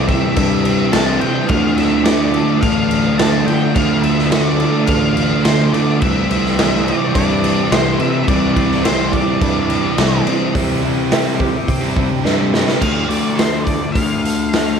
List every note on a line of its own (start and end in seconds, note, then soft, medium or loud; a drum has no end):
0.00 0.13 C2 loud
0.00 0.35 C3 medium
0.00 0.36 E3 medium
0.00 0.66 E3 medium
0.00 0.36 G3 loud
0.00 0.37 C4 loud
0.00 0.65 C4 medium
0.00 0.37 E4 loud
0.08 1.51 G4 medium
0.08 0.96 E5 medium
0.08 kick medium
0.08 crash medium
0.36 0.82 G2 medium
0.36 1.48 C3 medium
0.36 1.48 E3 medium
0.36 1.49 G3 medium
0.36 1.49 C4 medium
0.36 2.63 D4 medium
0.36 1.50 E4 medium
0.36 kick loud
0.36 crash medium
0.65 1.21 C4 medium
0.65 crash medium
0.92 1.17 C2 loud
0.92 1.51 E3 medium
0.92 1.20 A5 loud
0.92 snare loud
0.92 crash loud
1.21 1.45 C3 medium
1.21 1.51 C4 medium
1.21 1.51 G5 loud
1.21 crash medium
1.48 2.38 D2 loud
1.48 2.61 D3 medium
1.48 2.92 F3 medium
1.48 2.63 A3 loud
1.48 2.63 D4 loud
1.48 2.64 F4 loud
1.48 1.77 F5 loud
1.48 kick loud
1.48 crash medium
1.77 2.07 A3 medium
1.77 2.04 E5 loud
1.77 snare soft
1.77 crash medium
2.04 2.91 A3 medium
2.04 2.61 D5 loud
2.04 snare loud
2.04 crash medium
2.34 3.76 A4 medium
2.34 crash medium
2.61 3.08 A1 medium
2.61 3.74 D3 medium
2.61 3.74 A3 medium
2.61 3.77 D4 medium
2.61 4.89 D4 medium
2.61 3.75 F4 medium
2.61 3.20 F5 loud
2.61 kick loud
2.61 crash medium
2.91 3.47 A3 medium
2.91 crash medium
3.18 3.42 D2 loud
3.18 3.76 F3 medium
3.18 3.45 A5 loud
3.18 snare loud
3.18 crash medium
3.46 3.70 D3 medium
3.46 4.04 A3 medium
3.46 3.76 G5 loud
3.46 crash medium
3.74 4.64 D2 loud
3.74 4.87 D3 loud
3.74 5.18 F3 medium
3.74 4.88 A3 loud
3.74 4.89 D4 loud
3.74 4.88 F4 loud
3.74 4.02 F5 loud
3.74 kick loud
3.74 crash medium
4.03 4.32 A3 medium
4.03 4.31 E5 loud
4.03 crash medium
4.18 snare soft
4.31 5.16 A3 medium
4.31 4.86 D5 medium
4.31 snare loud
4.31 crash medium
4.60 6.02 A4 medium
4.60 crash medium
4.86 5.33 A1 loud
4.86 6.00 D3 medium
4.86 6.00 A3 medium
4.86 6.05 D4 medium
4.86 6.04 D4 medium
4.86 5.46 F5 loud
4.86 kick loud
4.86 crash medium
4.91 6.01 F4 medium
5.17 5.72 A3 medium
5.17 crash medium
5.44 5.68 D2 loud
5.44 6.02 F3 medium
5.44 5.74 C5 medium
5.44 snare loud
5.44 crash medium
5.72 5.96 D3 loud
5.72 6.02 A3 medium
5.72 6.00 D5 medium
5.72 crash medium
6.01 6.91 C2 loud
6.01 7.14 C3 medium
6.01 7.71 E3 medium
6.01 7.15 E3 loud
6.01 7.15 G3 loud
6.01 7.16 C4 loud
6.01 7.16 E4 loud
6.01 6.86 E5 loud
6.01 kick loud
6.01 crash medium
6.31 6.59 C4 medium
6.31 crash medium
6.46 snare soft
6.59 7.44 C4 medium
6.59 snare loud
6.59 crash loud
6.86 9.12 G4 medium
6.86 7.14 D5 medium
6.86 crash medium
7.14 7.60 G2 loud
7.14 8.26 C3 medium
7.14 8.28 E3 medium
7.14 8.28 G3 medium
7.14 8.28 C4 medium
7.14 8.57 D4 medium
7.14 8.29 E4 medium
7.14 7.73 D5 medium
7.14 kick loud
7.14 crash medium
7.44 7.99 C4 medium
7.44 crash medium
7.71 7.94 C2 loud
7.71 8.27 E3 medium
7.71 7.98 C5 medium
7.71 snare loud
7.71 crash medium
8.00 8.22 C3 medium
8.00 8.55 C4 medium
8.00 8.28 E5 medium
8.00 crash medium
8.27 9.17 C2 loud
8.27 9.39 C3 medium
8.27 9.70 E3 medium
8.27 9.40 E3 loud
8.27 9.40 G3 loud
8.27 9.40 C4 loud
8.27 9.40 E4 loud
8.27 8.86 D5 medium
8.27 kick loud
8.27 crash medium
8.56 8.84 C4 medium
8.56 kick medium
8.56 crash medium
8.72 snare soft
8.84 9.68 C4 medium
8.84 9.14 C5 medium
8.84 snare loud
8.84 crash medium
9.12 10.55 G4 medium
9.12 10.22 D5 medium
9.12 kick medium
9.12 crash medium
9.40 9.86 G2 loud
9.40 10.53 C3 medium
9.40 10.53 E3 medium
9.40 10.53 G3 medium
9.40 10.54 C4 medium
9.40 10.54 D4 medium
9.40 10.54 E4 medium
9.40 kick loud
9.40 crash medium
9.69 10.25 C4 medium
9.69 crash medium
9.98 10.21 C2 loud
9.98 10.54 E3 medium
9.98 snare loud
9.98 crash loud
10.26 10.49 C3 medium
10.26 10.55 C4 medium
10.26 crash medium
10.55 11.10 C3 medium
10.55 11.44 C3 loud
10.55 10.82 E3 medium
10.55 10.82 G3 medium
10.55 10.83 C4 loud
10.55 10.83 E4 medium
10.55 10.84 G4 medium
10.55 kick loud
10.55 open hi-hat medium
10.83 12.24 E3 medium
10.83 11.11 G3 medium
10.83 10.98 C4 medium
10.83 10.97 E4 medium
10.83 10.96 G4 medium
10.97 11.12 G3 medium
10.97 11.11 C4 medium
10.97 11.12 E4 medium
10.97 11.12 G4 medium
11.11 11.54 C3 medium
11.11 11.39 G3 medium
11.11 11.68 C4 medium
11.11 11.27 C4 loud
11.11 11.26 E4 loud
11.11 11.25 G4 medium
11.11 snare loud
11.11 open hi-hat medium
11.26 11.40 C4 medium
11.26 11.39 E4 medium
11.26 11.40 G4 medium
11.40 11.83 C3 medium
11.40 11.55 G3 medium
11.40 11.54 C4 medium
11.40 12.82 G4 medium
11.40 muted overdriven electric guitar stroke soft
11.40 kick medium
11.55 muted distorted electric guitar stroke medium
11.68 12.13 C3 loud
11.68 12.54 C4 medium
11.68 kick medium
11.68 open hi-hat medium
11.81 11.97 G3 medium
11.81 11.95 C4 medium
11.81 11.95 E4 medium
11.81 11.96 G4 medium
11.95 12.23 C3 medium
11.95 12.23 G3 medium
11.95 12.24 C4 medium
11.95 12.83 D4 medium
11.95 12.24 E4 medium
11.95 12.25 G4 medium
11.95 kick medium
12.10 muted distorted electric guitar stroke soft
12.24 12.70 G2 medium
12.24 12.67 C3 medium
12.24 12.82 E3 medium
12.24 12.53 G3 medium
12.24 12.39 C4 loud
12.24 12.38 E4 medium
12.24 12.37 G4 loud
12.24 snare medium
12.38 12.52 G3 medium
12.38 12.54 C4 medium
12.38 12.55 E4 medium
12.38 12.55 G4 medium
12.52 12.79 C3 medium
12.52 12.81 G3 medium
12.52 12.83 C4 medium
12.52 12.70 C4 medium
12.52 snare medium
12.56 12.69 E4 medium
12.56 12.68 G4 medium
12.68 12.82 C4 medium
12.68 12.82 E4 medium
12.68 12.81 G4 medium
12.68 snare medium
12.79 13.04 D2 medium
12.79 14.80 D3 medium
12.79 13.39 F3 medium
12.79 14.80 A3 medium
12.79 14.80 D4 medium
12.79 13.09 F5 loud
12.79 kick loud
12.79 crash medium
13.09 13.77 D2 medium
13.09 13.39 D5 medium
13.09 open hi-hat medium
13.35 13.67 C5 medium
13.35 snare loud
13.35 open hi-hat medium
13.40 14.80 F3 medium
13.64 13.92 D5 medium
13.64 kick medium
13.64 open hi-hat soft
13.68 14.80 D4 medium
13.92 14.80 D2 loud
13.92 14.52 A3 medium
13.92 14.76 F5 medium
13.92 kick loud
13.92 open hi-hat medium
14.25 14.80 A4 medium
14.25 open hi-hat medium
14.53 14.80 A3 medium
14.53 snare loud
14.53 open hi-hat medium